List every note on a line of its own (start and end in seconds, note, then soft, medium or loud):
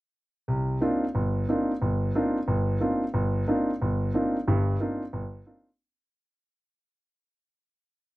0.48 0.76 C2 medium
0.81 1.03 A#3 soft
0.81 1.04 C4 soft
0.81 1.04 D4 soft
0.81 1.04 D#4 soft
0.81 1.04 F4 medium
1.15 1.43 G1 medium
1.49 1.71 A#3 soft
1.49 1.70 C4 soft
1.49 1.71 D4 soft
1.49 1.71 D#4 soft
1.49 1.71 F4 soft
1.81 2.10 G1 medium
2.15 2.37 A#3 medium
2.15 2.37 C4 soft
2.15 2.37 D4 soft
2.15 2.37 D#4 soft
2.15 2.37 F4 medium
2.48 2.76 G1 medium
2.80 3.03 A#3 soft
2.80 3.03 C4 soft
2.80 3.03 D4 soft
2.80 3.03 D#4 soft
2.80 3.03 F4 medium
3.14 3.42 G1 medium
3.48 3.69 A#3 medium
3.48 3.70 C4 soft
3.48 3.69 D4 medium
3.48 3.70 D#4 soft
3.48 3.70 F4 medium
3.81 4.09 G1 medium
4.14 4.36 A#3 soft
4.14 4.36 C4 soft
4.14 4.36 D4 soft
4.14 4.36 D#4 soft
4.14 4.36 F4 medium
4.47 4.75 G1 medium
4.47 4.75 G2 medium
4.80 5.02 A#3 medium
4.80 5.02 C4 soft
4.80 5.02 D4 soft
4.80 5.02 D#4 soft
4.80 5.02 F4 medium
5.13 5.41 G1 medium
5.46 5.68 A#3 soft
5.46 5.68 C4 soft
5.46 5.68 D4 soft
5.46 5.68 D#4 soft
5.46 5.68 F4 medium